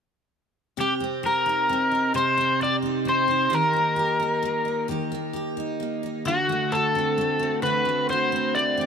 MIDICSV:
0, 0, Header, 1, 3, 480
1, 0, Start_track
1, 0, Key_signature, -3, "minor"
1, 0, Tempo, 913242
1, 407, Time_signature, 6, 3, 24, 8
1, 4657, End_track
2, 0, Start_track
2, 0, Title_t, "Electric slide guitar"
2, 0, Program_c, 0, 29
2, 423, Note_on_c, 0, 67, 70
2, 486, Note_off_c, 0, 67, 0
2, 662, Note_on_c, 0, 70, 65
2, 1133, Note_off_c, 0, 70, 0
2, 1135, Note_on_c, 0, 72, 71
2, 1378, Note_off_c, 0, 72, 0
2, 1383, Note_on_c, 0, 74, 82
2, 1445, Note_off_c, 0, 74, 0
2, 1624, Note_on_c, 0, 72, 74
2, 1862, Note_off_c, 0, 72, 0
2, 1863, Note_on_c, 0, 70, 66
2, 2554, Note_off_c, 0, 70, 0
2, 3298, Note_on_c, 0, 66, 66
2, 3533, Note_on_c, 0, 69, 62
2, 3540, Note_off_c, 0, 66, 0
2, 4009, Note_off_c, 0, 69, 0
2, 4011, Note_on_c, 0, 71, 74
2, 4257, Note_off_c, 0, 71, 0
2, 4259, Note_on_c, 0, 72, 76
2, 4492, Note_on_c, 0, 74, 73
2, 4501, Note_off_c, 0, 72, 0
2, 4657, Note_off_c, 0, 74, 0
2, 4657, End_track
3, 0, Start_track
3, 0, Title_t, "Steel-string acoustic guitar"
3, 0, Program_c, 1, 25
3, 405, Note_on_c, 1, 48, 51
3, 408, Note_on_c, 1, 67, 50
3, 528, Note_on_c, 1, 60, 42
3, 645, Note_off_c, 1, 67, 0
3, 647, Note_on_c, 1, 67, 50
3, 766, Note_on_c, 1, 63, 42
3, 884, Note_off_c, 1, 60, 0
3, 890, Note_on_c, 1, 60, 46
3, 1005, Note_off_c, 1, 63, 0
3, 1007, Note_on_c, 1, 63, 46
3, 1119, Note_off_c, 1, 48, 0
3, 1125, Note_on_c, 1, 48, 57
3, 1126, Note_off_c, 1, 67, 0
3, 1128, Note_on_c, 1, 67, 42
3, 1242, Note_off_c, 1, 60, 0
3, 1248, Note_on_c, 1, 60, 46
3, 1370, Note_off_c, 1, 67, 0
3, 1372, Note_on_c, 1, 67, 52
3, 1482, Note_off_c, 1, 63, 0
3, 1485, Note_on_c, 1, 63, 45
3, 1598, Note_off_c, 1, 60, 0
3, 1604, Note_on_c, 1, 60, 42
3, 1720, Note_off_c, 1, 63, 0
3, 1722, Note_on_c, 1, 63, 43
3, 1837, Note_off_c, 1, 48, 0
3, 1839, Note_on_c, 1, 51, 54
3, 1840, Note_off_c, 1, 67, 0
3, 1842, Note_on_c, 1, 67, 47
3, 1893, Note_off_c, 1, 60, 0
3, 1963, Note_on_c, 1, 58, 39
3, 2076, Note_off_c, 1, 67, 0
3, 2082, Note_on_c, 1, 67, 51
3, 2203, Note_off_c, 1, 63, 0
3, 2205, Note_on_c, 1, 63, 48
3, 2320, Note_off_c, 1, 58, 0
3, 2326, Note_on_c, 1, 58, 49
3, 2438, Note_off_c, 1, 63, 0
3, 2444, Note_on_c, 1, 63, 42
3, 2561, Note_off_c, 1, 51, 0
3, 2561, Note_off_c, 1, 67, 0
3, 2565, Note_on_c, 1, 51, 58
3, 2570, Note_on_c, 1, 67, 42
3, 2683, Note_off_c, 1, 58, 0
3, 2689, Note_on_c, 1, 58, 48
3, 2797, Note_off_c, 1, 67, 0
3, 2803, Note_on_c, 1, 67, 49
3, 2921, Note_off_c, 1, 63, 0
3, 2927, Note_on_c, 1, 63, 43
3, 3041, Note_off_c, 1, 58, 0
3, 3048, Note_on_c, 1, 58, 45
3, 3163, Note_off_c, 1, 63, 0
3, 3170, Note_on_c, 1, 63, 44
3, 3284, Note_off_c, 1, 51, 0
3, 3286, Note_on_c, 1, 50, 58
3, 3287, Note_off_c, 1, 63, 0
3, 3289, Note_on_c, 1, 66, 43
3, 3333, Note_off_c, 1, 67, 0
3, 3335, Note_off_c, 1, 58, 0
3, 3412, Note_on_c, 1, 57, 50
3, 3526, Note_off_c, 1, 66, 0
3, 3532, Note_on_c, 1, 66, 55
3, 3654, Note_on_c, 1, 60, 48
3, 3766, Note_off_c, 1, 57, 0
3, 3772, Note_on_c, 1, 57, 46
3, 3884, Note_off_c, 1, 60, 0
3, 3886, Note_on_c, 1, 60, 48
3, 4000, Note_off_c, 1, 50, 0
3, 4003, Note_off_c, 1, 66, 0
3, 4006, Note_on_c, 1, 50, 55
3, 4010, Note_on_c, 1, 66, 50
3, 4120, Note_off_c, 1, 57, 0
3, 4127, Note_on_c, 1, 57, 50
3, 4245, Note_off_c, 1, 66, 0
3, 4251, Note_on_c, 1, 66, 55
3, 4372, Note_off_c, 1, 60, 0
3, 4374, Note_on_c, 1, 60, 44
3, 4487, Note_off_c, 1, 57, 0
3, 4495, Note_on_c, 1, 57, 47
3, 4605, Note_off_c, 1, 60, 0
3, 4612, Note_on_c, 1, 60, 50
3, 4657, Note_off_c, 1, 50, 0
3, 4657, Note_off_c, 1, 57, 0
3, 4657, Note_off_c, 1, 60, 0
3, 4657, Note_off_c, 1, 66, 0
3, 4657, End_track
0, 0, End_of_file